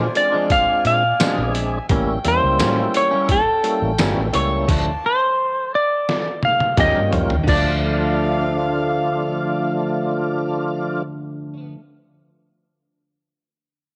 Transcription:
0.00 0.17 C5 medium
0.00 1.85 D5 medium
0.00 1.85 G#5 medium
0.15 1.03 G#3 medium
0.15 1.04 C4 medium
0.15 1.04 D4 medium
0.15 1.04 F4 medium
0.15 0.52 D5 medium
0.15 closed hi-hat medium
0.32 0.55 F3 soft
0.32 0.54 G#3 soft
0.32 0.54 D4 soft
0.50 0.84 F5 loud
0.50 kick medium
0.50 closed hi-hat medium
0.85 1.12 A#2 medium
0.85 1.53 F5 medium
0.85 closed hi-hat medium
1.20 1.41 A#2 medium
1.20 1.41 F3 medium
1.20 1.79 G#3 medium
1.20 1.42 G#3 medium
1.20 1.79 C4 medium
1.20 1.79 D4 medium
1.20 1.42 D4 medium
1.20 1.79 G#4 medium
1.20 snare loud
1.20 closed hi-hat medium
1.20 tambourine loud
1.38 1.78 A#1 medium
1.53 1.87 E5 medium
1.53 closed hi-hat medium
1.89 2.16 A1 medium
1.89 2.11 A2 medium
1.89 2.19 G3 medium
1.89 2.11 G3 medium
1.89 2.19 A#3 medium
1.89 2.11 A#3 medium
1.89 2.19 C#4 medium
1.89 4.66 C#4 medium
1.89 2.12 C#4 medium
1.89 2.19 E4 loud
1.89 4.66 G5 medium
1.89 kick loud
1.89 closed hi-hat medium
2.24 2.38 E2 medium
2.24 3.42 G3 medium
2.24 3.42 A#3 medium
2.24 3.42 C#4 medium
2.24 3.42 E4 medium
2.24 2.96 C5 medium
2.24 closed hi-hat medium
2.43 2.61 C#2 medium
2.59 2.80 A2 medium
2.59 2.86 A2 medium
2.59 2.81 G3 medium
2.59 2.81 A#3 medium
2.59 2.81 C#4 medium
2.59 snare loud
2.59 closed hi-hat medium
2.59 tambourine loud
2.94 3.31 C#5 loud
2.94 closed hi-hat medium
3.11 3.34 G3 soft
3.11 3.33 A#3 soft
3.11 3.32 C#4 medium
3.29 6.75 A4 medium
3.29 kick medium
3.29 closed hi-hat medium
3.63 3.93 G3 medium
3.63 3.93 A#3 medium
3.63 3.93 C#4 medium
3.63 3.93 E4 medium
3.63 closed hi-hat medium
3.82 3.95 A1 medium
3.98 4.13 G1 medium
3.98 4.20 A2 medium
3.98 4.28 G3 medium
3.98 4.20 G3 medium
3.98 4.28 A#3 medium
3.98 4.21 A#3 medium
3.98 4.28 C#4 medium
3.98 4.21 C#4 medium
3.98 4.28 E4 medium
3.98 snare loud
3.98 closed hi-hat medium
3.98 tambourine loud
4.18 4.30 A1 medium
4.33 4.69 C#2 medium
4.33 4.68 G3 medium
4.33 4.68 A#3 medium
4.33 4.68 C#4 medium
4.33 4.68 E4 loud
4.33 4.68 C#5 medium
4.33 closed hi-hat medium
4.68 4.95 D2 medium
4.68 4.89 D3 medium
4.68 4.90 F3 medium
4.68 4.90 A3 medium
4.68 4.90 D4 medium
4.68 5.23 D5 medium
4.68 5.23 F5 medium
4.68 5.23 A5 medium
4.68 kick loud
4.68 closed hi-hat medium
4.68 crash medium
5.06 5.72 C5 medium
5.75 6.42 D5 medium
6.09 snare medium
6.43 6.78 F5 medium
6.43 high tom medium
6.60 high tom medium
6.77 6.91 D#2 medium
6.77 6.99 D#3 medium
6.77 7.36 G3 medium
6.77 7.36 A#3 medium
6.77 6.99 A#3 medium
6.77 7.36 C#4 medium
6.77 6.99 C#4 medium
6.77 7.36 F4 medium
6.77 7.00 G4 loud
6.77 7.47 C#5 medium
6.77 7.47 D#5 medium
6.77 7.13 D#5 medium
6.77 7.47 G5 medium
6.77 kick medium
6.77 snare medium
6.77 closed hi-hat medium
6.77 mid tom medium
6.96 7.11 G2 medium
7.13 7.29 F2 medium
7.13 closed hi-hat medium
7.13 floor tom medium
7.30 7.46 D#2 medium
7.30 floor tom medium
7.44 11.73 D2 medium
7.44 11.75 D3 medium
7.44 11.02 F3 medium
7.44 11.02 A3 medium
7.44 11.02 D4 medium
7.44 11.02 F4 medium
7.44 kick loud
7.44 crash medium
7.48 11.77 F3 medium
7.48 11.73 D4 loud
7.48 11.03 A4 medium
7.48 11.03 D5 medium
7.48 11.03 F5 medium
7.54 11.80 A3 medium
7.54 11.82 D4 medium

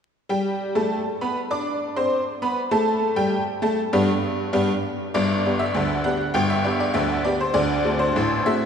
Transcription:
0.29 0.54 G3 medium
0.29 0.55 G4 medium
0.29 0.55 G5 medium
0.75 1.00 A3 medium
0.75 1.00 A4 medium
0.75 1.01 A5 medium
1.21 1.38 B3 medium
1.21 1.38 B4 medium
1.21 1.38 B5 medium
1.51 1.76 D4 medium
1.51 1.76 D5 medium
1.51 1.76 D6 medium
1.96 2.21 C4 medium
1.96 2.22 C5 medium
1.96 2.21 C6 medium
2.42 2.58 B3 medium
2.42 2.58 B4 medium
2.42 2.59 B5 medium
2.71 2.96 A3 medium
2.71 2.97 A4 medium
2.71 2.96 A5 medium
3.16 3.41 G3 medium
3.16 3.42 G4 medium
3.16 3.41 G5 medium
3.62 3.79 A3 medium
3.62 3.79 A4 medium
3.62 3.79 A5 medium
3.93 4.09 G2 loud
3.93 4.09 B3 medium
3.93 4.10 D4 medium
3.93 4.10 G4 medium
4.53 4.70 G2 medium
4.53 4.70 B3 medium
4.53 4.70 D4 medium
4.53 4.70 G4 medium
5.14 5.40 G1 medium
5.14 5.40 G2 medium
5.14 5.60 D5 medium
5.45 5.62 B3 soft
5.45 5.62 D4 soft
5.45 5.62 G4 medium
5.59 6.05 E5 medium
5.74 6.00 D2 medium
5.74 6.01 D3 medium
6.04 6.21 B3 soft
6.04 6.22 D4 soft
6.04 6.22 G4 medium
6.04 6.35 F#5 medium
6.34 6.61 G1 medium
6.34 6.60 G2 medium
6.34 6.50 G5 loud
6.50 6.65 E5 medium
6.65 6.82 B3 soft
6.65 6.82 D4 soft
6.65 6.83 G4 soft
6.65 6.79 D5 medium
6.80 6.96 D5 medium
6.94 7.21 D2 medium
6.94 7.21 D3 medium
6.94 7.25 E5 medium
7.25 7.42 B3 soft
7.25 7.43 D4 soft
7.25 7.43 G4 medium
7.25 7.41 D5 medium
7.41 7.56 C5 medium
7.54 7.81 D2 medium
7.54 7.81 D3 medium
7.54 8.00 D5 loud
7.85 8.02 A3 soft
7.85 8.02 C4 soft
7.85 8.03 F#4 medium
7.99 8.46 C5 medium
8.16 8.42 A1 medium
8.16 8.42 A2 medium
8.46 8.63 A3 medium
8.46 8.63 C4 medium
8.46 8.63 F#4 medium
8.46 8.65 E5 medium

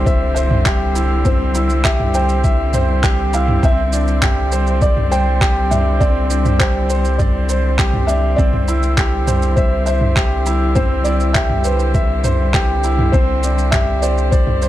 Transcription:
0.00 3.60 C2 medium
0.00 8.37 D3 medium
0.00 14.69 G3 medium
0.00 14.69 C4 medium
0.00 0.96 E4 medium
0.00 8.38 E4 medium
0.00 0.66 G4 loud
0.00 0.36 C5 medium
0.00 sub drop medium
0.05 0.37 C5 medium
0.05 0.35 E5 medium
0.05 kick loud
0.05 shaker soft
0.35 0.53 C5 medium
0.35 0.91 E5 loud
0.35 shaker medium
0.51 mid tom medium
0.66 0.83 G4 loud
0.66 kick loud
0.66 clap loud
0.66 shaker soft
0.95 1.13 E4 medium
0.95 shaker medium
1.25 1.42 C4 medium
1.25 1.87 C5 medium
1.25 kick loud
1.25 mid tom medium
1.25 shaker soft
1.55 1.72 E4 medium
1.55 shaker medium
1.70 shaker soft
1.84 2.13 G4 loud
1.84 2.15 E5 medium
1.84 kick loud
1.84 clap loud
1.84 shaker soft
2.00 mid tom medium
2.14 2.43 C5 medium
2.14 3.00 G5 medium
2.14 shaker medium
2.29 shaker soft
2.44 2.73 E5 medium
2.44 kick loud
2.44 shaker soft
2.74 2.91 C5 medium
2.74 mid tom medium
2.74 shaker medium
3.03 3.21 G4 loud
3.03 kick loud
3.03 clap medium
3.03 shaker soft
3.33 3.50 E4 medium
3.33 3.64 F5 medium
3.33 shaker medium
3.48 mid tom medium
3.63 8.35 C2 loud
3.63 3.80 C4 medium
3.63 4.86 E5 loud
3.63 kick loud
3.63 shaker soft
3.93 4.10 D4 medium
3.93 shaker medium
4.08 shaker soft
4.22 4.51 G4 loud
4.22 kick loud
4.22 clap loud
4.22 mid tom medium
4.22 shaker soft
4.52 4.81 C5 medium
4.52 shaker medium
4.67 shaker soft
4.82 5.10 D5 medium
4.82 5.13 D5 loud
4.82 kick loud
4.82 shaker soft
4.97 mid tom medium
5.11 5.29 C5 medium
5.11 5.73 G5 loud
5.11 shaker medium
5.41 5.58 G4 loud
5.41 kick loud
5.41 clap medium
5.41 shaker soft
5.71 5.88 D4 medium
5.71 6.02 E5 loud
5.71 mid tom medium
5.71 shaker medium
6.00 6.18 C4 medium
6.00 6.62 D5 loud
6.00 kick loud
6.00 shaker soft
6.30 6.48 D4 medium
6.30 shaker medium
6.45 mid tom medium
6.45 shaker soft
6.59 6.89 G4 medium
6.59 7.15 C5 medium
6.59 kick loud
6.59 clap loud
6.59 shaker soft
6.90 7.18 C5 medium
6.90 shaker medium
7.05 shaker soft
7.18 7.74 D5 medium
7.18 7.48 D5 medium
7.18 kick loud
7.18 mid tom medium
7.18 shaker soft
7.49 7.66 C5 medium
7.49 shaker medium
7.79 7.96 G4 loud
7.79 kick loud
7.79 clap medium
7.79 shaker soft
7.93 mid tom medium
8.07 8.26 D4 medium
8.07 8.39 E5 loud
8.07 shaker medium
8.36 13.11 C2 medium
8.36 14.69 D3 medium
8.36 8.56 C4 medium
8.36 9.60 D5 loud
8.36 kick loud
8.36 shaker soft
8.53 mid tom medium
8.68 8.85 E4 medium
8.68 14.69 E4 medium
8.68 shaker medium
8.83 shaker soft
8.98 9.26 G4 loud
8.98 kick loud
8.98 clap medium
8.98 shaker soft
9.28 9.56 C5 medium
9.28 mid tom medium
9.28 shaker medium
9.42 shaker soft
9.56 9.87 C5 loud
9.56 9.86 E5 medium
9.56 kick loud
9.56 shaker soft
9.86 10.04 C5 medium
9.86 10.42 E5 medium
9.86 shaker medium
10.01 mid tom medium
10.16 10.34 G4 loud
10.16 kick loud
10.16 clap medium
10.16 shaker soft
10.46 10.63 E4 medium
10.46 shaker medium
10.75 10.93 C4 medium
10.75 11.06 C5 loud
10.75 kick loud
10.75 mid tom medium
10.75 shaker soft
11.04 11.23 E4 medium
11.04 11.36 D5 loud
11.04 shaker medium
11.20 shaker soft
11.33 11.64 G4 medium
11.33 11.65 E5 loud
11.33 kick loud
11.33 clap medium
11.33 shaker soft
11.50 mid tom medium
11.63 12.79 B4 medium
11.63 11.93 C5 medium
11.63 shaker medium
11.79 shaker soft
11.94 12.23 E5 medium
11.94 kick loud
11.94 shaker soft
12.24 12.41 C5 medium
12.24 mid tom medium
12.24 shaker medium
12.54 12.71 G4 loud
12.54 kick loud
12.54 clap medium
12.54 shaker soft
12.84 13.01 E4 medium
12.84 shaker medium
12.99 mid tom medium
13.12 14.69 C2 medium
13.12 13.31 C4 medium
13.12 13.74 C5 loud
13.12 kick loud
13.12 shaker soft
13.43 13.60 D4 medium
13.43 shaker medium
13.58 shaker soft
13.71 14.01 G4 loud
13.71 14.03 E5 loud
13.71 kick loud
13.71 clap loud
13.71 mid tom medium
13.71 shaker soft
14.02 14.31 C5 medium
14.02 14.33 D5 loud
14.02 shaker medium
14.18 shaker soft
14.31 14.69 C5 loud
14.31 14.61 D5 medium
14.31 kick loud
14.31 shaker soft
14.47 mid tom medium
14.62 14.69 C5 medium
14.62 shaker medium

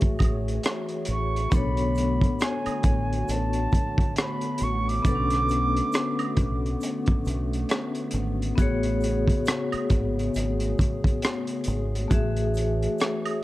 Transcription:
0.00 1.48 E3 medium
0.00 1.46 A3 medium
0.00 1.48 A3 medium
0.00 1.47 F#4 medium
0.00 13.44 F#4 medium
0.00 1.48 G#4 medium
0.00 1.49 G#4 medium
0.00 5.01 C#5 medium
0.00 1.49 E5 medium
0.00 kick medium
0.00 closed hi-hat soft
0.19 0.58 A1 medium
0.19 kick medium
0.19 closed hi-hat medium
0.19 high woodblock medium
0.19 shaker soft
0.48 closed hi-hat soft
0.63 cross-stick loud
0.63 closed hi-hat medium
0.63 shaker medium
0.89 closed hi-hat soft
1.05 1.46 A1 medium
1.05 closed hi-hat medium
1.05 shaker soft
1.11 1.56 C#6 medium
1.36 closed hi-hat soft
1.50 2.27 B1 loud
1.50 8.54 D3 medium
1.50 12.07 A3 medium
1.50 5.00 B3 medium
1.50 12.07 B3 medium
1.50 5.01 D4 medium
1.50 kick loud
1.50 closed hi-hat medium
1.50 shaker medium
1.54 5.02 A4 medium
1.54 5.03 C#5 medium
1.54 2.44 B5 loud
1.77 closed hi-hat soft
1.95 closed hi-hat medium
1.95 shaker soft
2.21 kick medium
2.21 closed hi-hat soft
2.39 3.33 G#5 medium
2.39 cross-stick medium
2.39 closed hi-hat medium
2.39 shaker medium
2.66 muted fingered electric bass stroke soft
2.66 closed hi-hat soft
2.66 high woodblock medium
2.83 3.22 A1 medium
2.83 kick medium
2.83 closed hi-hat medium
2.83 shaker soft
3.13 closed hi-hat soft
3.28 3.66 A1 medium
3.28 4.18 A5 loud
3.28 closed hi-hat medium
3.28 shaker medium
3.53 closed hi-hat soft
3.72 kick medium
3.72 closed hi-hat medium
3.72 shaker soft
3.98 kick medium
3.98 closed hi-hat soft
4.16 4.65 B5 medium
4.16 cross-stick loud
4.16 closed hi-hat medium
4.16 shaker medium
4.41 closed hi-hat soft
4.58 4.99 A1 loud
4.58 closed hi-hat medium
4.58 shaker soft
4.63 4.90 C#6 loud
4.89 6.64 D6 loud
4.89 closed hi-hat soft
5.03 5.80 B1 medium
5.03 8.53 B3 medium
5.03 8.54 D4 medium
5.03 kick loud
5.03 closed hi-hat medium
5.03 shaker medium
5.07 8.55 A4 medium
5.07 5.14 B4 medium
5.15 8.59 C#4 medium
5.30 cross-stick soft
5.30 closed hi-hat medium
5.49 closed hi-hat medium
5.49 shaker medium
5.77 closed hi-hat soft
5.92 cross-stick loud
5.92 closed hi-hat medium
5.92 shaker medium
6.19 closed hi-hat soft
6.19 high woodblock medium
6.37 6.75 B1 medium
6.37 kick medium
6.37 closed hi-hat medium
6.37 shaker soft
6.66 closed hi-hat soft
6.81 closed hi-hat medium
6.81 shaker medium
7.06 kick loud
7.06 closed hi-hat soft
7.25 7.64 B1 medium
7.25 closed hi-hat medium
7.25 shaker soft
7.53 closed hi-hat soft
7.69 cross-stick loud
7.69 closed hi-hat medium
7.69 shaker medium
7.95 closed hi-hat soft
8.11 8.51 G#1 loud
8.11 closed hi-hat medium
8.11 shaker soft
8.42 closed hi-hat soft
8.56 9.33 A1 loud
8.56 12.07 C#3 medium
8.56 12.06 B3 medium
8.56 12.07 F#4 medium
8.56 13.44 G#4 medium
8.56 kick loud
8.56 closed hi-hat medium
8.56 shaker medium
8.60 12.08 G#4 medium
8.60 12.09 C#5 loud
8.83 closed hi-hat medium
9.01 closed hi-hat medium
9.01 shaker soft
9.28 kick medium
9.28 closed hi-hat soft
9.45 cross-stick loud
9.45 closed hi-hat medium
9.45 shaker medium
9.72 muted fingered electric bass stroke soft
9.72 closed hi-hat soft
9.72 high woodblock medium
9.90 10.28 G#1 medium
9.90 kick medium
9.90 closed hi-hat medium
9.90 shaker soft
10.19 closed hi-hat soft
10.34 10.73 G#1 medium
10.34 closed hi-hat medium
10.34 shaker medium
10.60 closed hi-hat soft
10.79 kick medium
10.79 closed hi-hat medium
10.79 shaker soft
11.04 kick medium
11.04 closed hi-hat soft
11.22 cross-stick loud
11.22 closed hi-hat medium
11.22 shaker medium
11.47 closed hi-hat soft
11.64 12.05 G#1 medium
11.64 closed hi-hat medium
11.64 shaker medium
11.95 closed hi-hat soft
12.08 12.86 A1 loud
12.08 13.44 E3 medium
12.08 13.44 A3 medium
12.08 13.44 F#4 medium
12.08 13.44 C#5 medium
12.08 kick loud
12.08 closed hi-hat medium
12.08 shaker medium
12.12 13.44 G#4 medium
12.12 13.44 E5 medium
12.36 closed hi-hat soft
12.54 closed hi-hat medium
12.54 shaker medium
12.83 closed hi-hat soft
12.99 cross-stick loud
12.99 closed hi-hat medium
12.99 shaker medium
13.25 closed hi-hat soft
13.25 high woodblock medium

